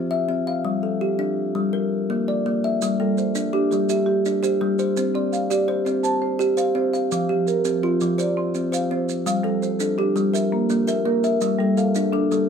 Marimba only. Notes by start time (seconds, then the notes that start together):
3.00 G3
3.17 C5
3.53 D4
3.71 G4
3.89 E5
4.06 G4
4.43 C5
4.61 G4
4.97 C5
5.15 C4
5.32 F5
5.50 D5
5.68 G4
5.85 C5
6.03 A5
6.22 C5
6.57 F5
6.76 C5
7.11 F5
7.30 F3
7.47 A#4
7.65 G4
7.83 C4
8.02 F4
8.20 D5
8.37 C4
8.73 F5
8.91 C5
9.26 F5
9.43 G3
9.62 C5
9.79 A4
9.98 D4
10.33 E5
10.52 A#3
10.87 E5
11.05 A#4
11.41 E5
11.59 G3
11.77 F5
11.95 A4
12.12 D4
12.31 A4